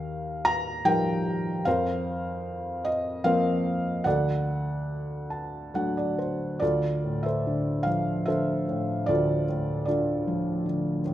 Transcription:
0.00 1.62 D#2 medium
0.00 0.41 A#4 medium
0.00 0.49 F5 medium
0.45 0.87 A#5 loud
0.85 1.63 F3 soft
0.85 1.63 G3 soft
0.85 1.64 D#4 medium
0.85 1.63 A#4 medium
0.85 1.62 G5 medium
1.65 4.01 F2 medium
1.65 2.82 A#4 medium
1.65 2.82 C5 medium
1.65 2.89 F5 medium
2.85 3.22 D#5 medium
3.24 4.02 F3 medium
3.24 4.03 A#3 soft
3.24 4.03 C4 medium
3.24 4.02 A#4 medium
3.24 4.02 C5 medium
3.24 4.07 F5 medium
4.04 6.58 D2 medium
4.04 5.71 A4 medium
4.04 5.71 D5 medium
4.04 5.70 F#5 medium
5.30 5.71 A5 soft
5.74 6.59 F#3 soft
5.74 6.59 A3 soft
5.74 6.60 D4 soft
5.74 5.95 F#5 medium
5.97 6.17 D5 soft
6.19 6.59 C5 soft
6.60 9.05 D2 soft
6.60 7.83 F4 medium
6.60 7.24 A4 medium
6.60 7.26 D5 medium
7.04 8.65 A2 soft
7.23 8.26 A4 soft
7.23 8.27 C5 soft
7.23 7.87 E5 medium
7.47 8.26 D3 soft
7.83 9.44 F3 soft
7.83 8.27 F5 medium
8.26 9.84 D3 soft
8.26 9.08 A4 medium
8.26 9.44 C5 medium
8.26 9.10 E5 medium
8.69 9.47 A2 soft
9.06 11.14 D2 medium
9.06 9.86 F4 medium
9.06 9.87 A4 medium
9.06 9.84 D5 medium
9.48 11.01 A2 soft
9.85 10.64 D3 soft
9.85 11.01 F4 soft
9.85 11.02 A4 soft
9.85 11.00 D5 medium
10.27 11.14 F3 soft
10.66 11.14 D3 soft
11.05 11.14 A2 soft

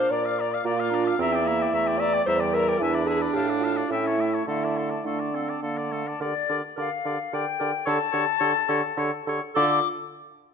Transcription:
0.00 0.38 D4 loud
0.00 0.13 C5 loud
0.00 0.12 F5 medium
0.10 0.59 A#2 loud
0.10 0.65 D5 loud
0.10 0.27 D5 medium
0.10 0.26 A#5 medium
0.25 0.42 F5 medium
0.25 0.40 D6 medium
0.39 0.56 D5 medium
0.39 0.53 A#5 medium
0.52 0.65 F5 medium
0.52 0.64 D6 medium
0.64 1.12 A#2 loud
0.64 0.89 A#3 loud
0.64 1.18 F4 loud
0.64 0.82 D5 loud
0.64 0.78 A#5 medium
0.77 0.96 F5 loud
0.77 0.92 D6 medium
0.90 1.18 D4 loud
0.90 1.06 A#5 loud
0.94 1.09 D5 medium
1.05 1.20 F5 medium
1.05 1.18 D6 medium
1.18 1.66 E2 loud
1.18 1.46 C4 loud
1.18 2.01 E4 loud
1.18 1.37 E5 medium
1.18 1.34 A#5 loud
1.32 1.49 D5 medium
1.32 1.47 G5 medium
1.45 1.73 A#3 loud
1.45 1.64 E5 loud
1.45 1.61 A#5 medium
1.59 1.74 D5 medium
1.59 1.73 G5 medium
1.72 2.20 E2 medium
1.72 2.24 A3 loud
1.72 1.89 E5 medium
1.72 1.88 A#5 medium
1.86 2.02 D5 medium
1.86 2.02 G5 medium
1.99 2.25 D5 loud
1.99 2.15 E5 medium
1.99 2.15 A#5 medium
2.14 2.27 D5 medium
2.14 2.26 G5 medium
2.25 2.74 E2 loud
2.25 2.78 G3 loud
2.25 2.38 C5 loud
2.25 2.42 E5 loud
2.25 2.42 A#5 medium
2.41 2.56 D5 medium
2.41 2.57 G5 medium
2.53 2.81 A#4 loud
2.53 2.70 E5 medium
2.53 2.70 A#5 loud
2.69 2.81 D5 medium
2.69 2.79 G5 medium
2.79 3.28 E2 loud
2.79 3.92 D4 loud
2.79 3.06 E4 loud
2.79 2.96 E5 loud
2.79 2.95 G#5 loud
2.93 3.09 D5 medium
2.93 3.09 B5 medium
3.06 3.19 G#4 loud
3.06 3.24 E5 loud
3.06 3.23 G#5 medium
3.22 3.34 D5 medium
3.22 3.34 B5 medium
3.33 3.84 A2 loud
3.33 3.46 G4 loud
3.33 3.51 F5 medium
3.33 3.50 A5 medium
3.48 3.66 D5 medium
3.48 3.64 F5 medium
3.60 3.73 F4 loud
3.60 3.78 A5 medium
3.65 3.79 F5 medium
3.77 3.91 D5 medium
3.77 3.90 F5 medium
3.89 4.41 A2 loud
3.89 4.19 C#4 loud
3.89 4.45 E4 loud
3.89 4.08 E5 medium
3.89 4.08 G5 medium
4.06 4.22 C#5 medium
4.06 4.20 A5 medium
4.18 4.46 A3 loud
4.18 4.36 E5 medium
4.18 4.34 G5 medium
4.33 4.47 C#5 medium
4.33 4.47 A5 medium
4.46 4.98 D3 loud
4.46 4.98 A3 medium
4.46 5.07 E4 loud
4.46 4.66 A4 medium
4.46 4.64 F5 medium
4.62 4.79 D5 medium
4.62 4.78 A5 medium
4.76 4.92 A4 medium
4.76 4.92 F5 medium
4.90 5.05 D5 medium
4.90 5.05 A5 medium
5.05 5.56 D3 medium
5.05 5.32 A3 medium
5.05 5.93 D4 medium
5.05 5.21 A4 medium
5.05 5.21 F5 medium
5.19 5.37 D5 medium
5.19 5.37 A5 medium
5.33 5.64 C4 medium
5.33 5.51 A4 medium
5.33 5.52 F5 medium
5.49 5.62 D5 medium
5.49 5.63 A5 medium
5.62 6.14 D3 medium
5.62 5.90 A#3 medium
5.62 5.79 A4 medium
5.62 5.81 F5 medium
5.77 5.94 D5 medium
5.77 5.97 A5 medium
5.91 6.04 A3 medium
5.91 6.09 A4 medium
5.95 6.11 F5 medium
6.07 6.22 D5 medium
6.07 6.22 A5 medium
6.19 6.33 D3 medium
6.19 6.33 G4 medium
6.19 6.32 A#4 medium
6.19 6.35 D5 medium
6.24 6.57 D5 loud
6.48 6.62 D3 medium
6.48 6.62 G4 medium
6.48 6.61 A#4 medium
6.48 6.63 D5 medium
6.76 6.90 D3 medium
6.76 6.90 G4 medium
6.76 6.88 A#4 medium
6.76 6.91 D5 medium
6.80 7.35 F5 loud
7.04 7.17 D3 medium
7.04 7.18 G4 medium
7.04 7.16 A#4 medium
7.04 7.18 D5 medium
7.32 7.45 D3 medium
7.32 7.45 G4 medium
7.32 7.44 A#4 medium
7.32 7.46 D5 medium
7.32 7.87 G5 loud
7.59 7.73 D3 medium
7.59 7.72 G4 medium
7.59 7.71 A#4 medium
7.59 7.72 D5 medium
7.86 7.99 D3 loud
7.86 7.99 G4 loud
7.86 7.98 A4 loud
7.86 7.98 C#5 loud
7.86 9.25 A5 loud
8.12 8.26 D3 loud
8.12 8.26 G4 loud
8.12 8.25 A4 medium
8.12 8.25 C#5 loud
8.39 8.53 D3 loud
8.39 8.53 G4 loud
8.39 8.53 A4 loud
8.39 8.52 C#5 loud
8.67 8.81 D3 loud
8.67 8.82 G4 loud
8.67 8.80 A4 medium
8.67 8.82 C#5 loud
8.96 9.10 D3 loud
8.96 9.11 G4 medium
8.96 9.10 A4 medium
8.96 9.11 C#5 medium
9.26 9.40 D3 medium
9.26 9.41 G4 medium
9.26 9.39 A4 medium
9.26 9.41 C#5 medium
9.54 9.80 D3 loud
9.54 9.81 F4 loud
9.54 9.79 A4 loud
9.54 9.80 D5 loud
9.54 9.88 D6 loud

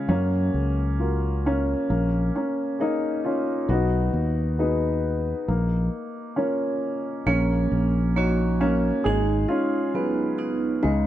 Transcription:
0.00 0.11 C#3 medium
0.00 0.11 G#3 medium
0.00 0.09 C#4 medium
0.00 0.10 F4 soft
0.00 0.11 G#4 soft
0.09 0.49 F#2 medium
0.09 1.85 F#3 medium
0.09 0.96 A#3 medium
0.09 0.95 C#4 medium
0.54 1.74 C#2 medium
0.99 1.87 F4 soft
0.99 1.87 F#4 soft
0.99 1.87 A#4 soft
1.46 1.88 A#3 medium
1.46 2.31 C#4 medium
1.90 2.30 A#1 medium
1.90 2.36 A#3 medium
2.36 2.78 A#3 soft
2.36 2.81 C#4 medium
2.79 3.22 A#3 medium
2.79 3.26 D#4 medium
2.79 3.66 G#4 soft
2.79 3.66 A#4 soft
2.79 3.66 C#5 soft
3.24 3.67 C#4 medium
3.24 3.66 F4 medium
3.69 4.08 B1 medium
3.69 4.60 B3 medium
3.69 4.56 D#4 medium
3.69 4.55 F#4 medium
4.13 5.32 D#2 medium
4.58 5.46 B3 medium
4.58 5.89 D#4 medium
4.58 5.45 F#4 soft
4.58 5.45 G#4 soft
4.58 5.46 B4 soft
5.48 5.88 A#1 medium
5.48 6.37 A#3 medium
6.36 7.23 A#3 medium
6.36 7.22 C#4 medium
6.36 7.24 F4 soft
6.36 7.24 A#4 soft
6.36 7.24 C#5 soft
7.26 7.66 A#1 medium
7.26 8.15 A#3 medium
7.26 8.61 A#3 medium
7.26 8.57 C#4 medium
7.72 8.90 A#1 medium
8.15 9.14 A#3 medium
8.15 8.60 C#4 medium
8.15 9.02 D#4 soft
8.15 9.02 F#4 soft
8.15 9.15 F#4 medium
8.15 9.02 C#5 soft
8.61 9.03 A#3 medium
8.61 9.06 C#4 medium
8.61 9.14 C#4 medium
9.04 9.45 G#1 medium
9.04 10.79 G#3 medium
9.04 9.47 D#4 medium
9.04 10.39 D#4 medium
9.04 9.50 G#4 medium
9.48 10.79 C#4 medium
9.48 10.86 F4 medium
9.94 10.80 F#3 soft
9.94 10.37 B3 soft
9.94 10.81 G#4 soft
9.94 10.81 B4 soft
10.38 10.83 B3 soft
10.38 10.92 D#4 soft
10.83 11.07 C#2 medium
10.83 11.07 C#3 medium
10.83 11.07 G#3 medium
10.83 11.07 D#4 medium

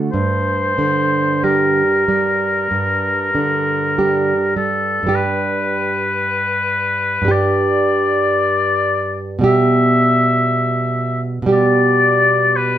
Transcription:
0.12 2.69 G2 soft
0.12 1.45 C5 medium
0.78 1.82 D3 soft
1.44 2.04 G3 soft
1.44 2.04 G4 soft
1.44 4.56 A#4 soft
2.08 3.11 G3 soft
2.71 5.02 G2 soft
3.35 4.33 D3 soft
3.98 4.53 G3 soft
3.98 4.53 G4 soft
4.56 5.05 G3 soft
4.56 5.16 A4 soft
5.03 7.21 G2 soft
5.03 7.23 G3 soft
5.09 7.25 G4 soft
5.15 7.33 B4 medium
7.22 9.37 G2 soft
7.22 9.38 G3 soft
7.28 9.40 G4 soft
7.28 9.29 D5 medium
9.39 11.41 B2 soft
9.39 11.45 G3 soft
9.44 11.47 G4 soft
9.44 11.21 E5 medium
11.42 12.78 B2 medium
11.42 12.78 G3 soft
11.49 12.78 G4 soft
11.53 12.58 D5 medium
12.56 12.78 B4 medium

